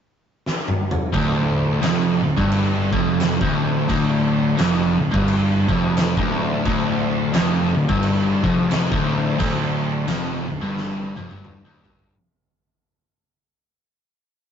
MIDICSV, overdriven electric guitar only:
0, 0, Header, 1, 2, 480
1, 0, Start_track
1, 0, Key_signature, -1, "minor"
1, 0, Tempo, 688863
1, 792, Time_signature, 4, 2, 24, 8
1, 5593, Tempo, 681818
1, 10162, End_track
2, 0, Start_track
2, 0, Title_t, "Overdriven electric guitar"
2, 0, Program_c, 0, 29
2, 785, Note_on_c, 0, 38, 112
2, 1263, Note_off_c, 0, 38, 0
2, 1267, Note_on_c, 0, 41, 108
2, 1547, Note_off_c, 0, 41, 0
2, 1559, Note_on_c, 0, 38, 71
2, 1649, Note_off_c, 0, 38, 0
2, 1652, Note_on_c, 0, 43, 103
2, 2029, Note_off_c, 0, 43, 0
2, 2039, Note_on_c, 0, 41, 105
2, 2368, Note_off_c, 0, 41, 0
2, 2376, Note_on_c, 0, 38, 103
2, 2699, Note_off_c, 0, 38, 0
2, 2708, Note_on_c, 0, 38, 107
2, 3182, Note_off_c, 0, 38, 0
2, 3185, Note_on_c, 0, 41, 107
2, 3468, Note_off_c, 0, 41, 0
2, 3471, Note_on_c, 0, 38, 72
2, 3562, Note_off_c, 0, 38, 0
2, 3564, Note_on_c, 0, 43, 103
2, 3946, Note_off_c, 0, 43, 0
2, 3959, Note_on_c, 0, 41, 102
2, 4289, Note_off_c, 0, 41, 0
2, 4298, Note_on_c, 0, 38, 104
2, 4630, Note_off_c, 0, 38, 0
2, 4638, Note_on_c, 0, 38, 109
2, 5109, Note_off_c, 0, 38, 0
2, 5112, Note_on_c, 0, 41, 108
2, 5390, Note_off_c, 0, 41, 0
2, 5397, Note_on_c, 0, 38, 79
2, 5490, Note_off_c, 0, 38, 0
2, 5493, Note_on_c, 0, 43, 103
2, 5871, Note_off_c, 0, 43, 0
2, 5879, Note_on_c, 0, 41, 112
2, 6210, Note_off_c, 0, 41, 0
2, 6217, Note_on_c, 0, 38, 106
2, 6539, Note_off_c, 0, 38, 0
2, 6547, Note_on_c, 0, 38, 108
2, 7028, Note_off_c, 0, 38, 0
2, 7034, Note_on_c, 0, 41, 104
2, 7315, Note_off_c, 0, 41, 0
2, 7320, Note_on_c, 0, 38, 74
2, 7413, Note_off_c, 0, 38, 0
2, 7416, Note_on_c, 0, 43, 108
2, 7794, Note_off_c, 0, 43, 0
2, 7801, Note_on_c, 0, 41, 104
2, 7895, Note_off_c, 0, 41, 0
2, 7900, Note_on_c, 0, 43, 98
2, 8133, Note_off_c, 0, 43, 0
2, 8139, Note_on_c, 0, 38, 106
2, 8273, Note_off_c, 0, 38, 0
2, 8276, Note_on_c, 0, 43, 101
2, 8468, Note_off_c, 0, 43, 0
2, 10162, End_track
0, 0, End_of_file